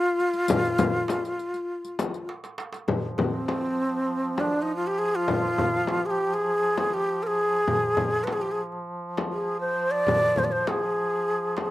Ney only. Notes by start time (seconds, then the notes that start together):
Already playing: F4
3.19 C#4
3.24 C4
4.40 D4
4.62 D#4
4.76 F4
4.87 G4
4.99 G#4
5.16 F4
6.06 G#4
6.11 G4
6.34 G#4
6.94 G4
7.23 G#4 A#4
8.24 B4
8.33 G#4
8.42 G4
8.52 G#4
9.33 G#4
9.61 C5
9.91 D5
10.38 C5
10.44 D5
10.52 C5
10.69 G#4